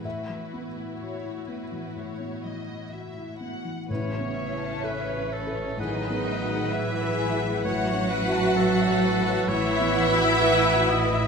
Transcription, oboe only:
X:1
M:4/4
L:1/8
Q:1/4=64
K:Alyd
V:1 name="Oboe"
z8 | c2 B A B4 | c B A2 c z B d |]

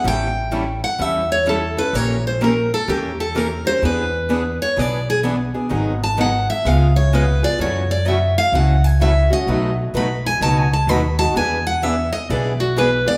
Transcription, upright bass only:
X:1
M:4/4
L:1/8
Q:"Swing" 1/4=127
K:Emix
V:1 name="Upright bass" clef=bass
A,,,4 E,,4 | ^A,,,4 E,,4 | E,,4 B,,,4 | G,,,4 C,,4 |
F,,4 C,,4 | B,,,2 B,,,2 C,,2 ^D,,2 | E,,4 B,,,4 |]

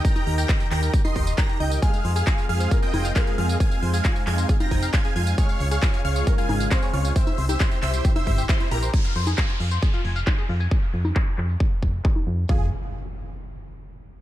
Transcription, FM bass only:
X:1
M:4/4
L:1/8
Q:1/4=135
K:Fm
V:1 name="FM bass" clef=bass
z E,, z E,, z E,,, z D,, | z F,, z F,, z F,,, z F,, | z F,, z F,, z F,,, z F,, | z D,, z D,, z A,,, z D,, |
z C,, z C,, z G,,, z B,,, | z F,, z F,, z F,,, z F,, | z F,, z F,, z F,,, z F,, | F,, z6 z |]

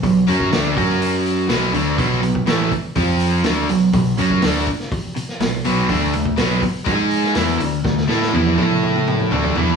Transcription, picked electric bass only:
X:1
M:4/4
L:1/8
Q:1/4=123
K:Bdor
V:1 name="Picked electric bass" clef=bass
B,,, F,, D,, F,,3 B,,, D,, | B,,, B,,, A,,, z =F,,2 D,, B,,, | B,,, F,, D,, z3 B,,, B,,, | D,, D,, B,,, z G,,2 E,, D,, |
D,, A,, E,, A,,3 D,, E,, |]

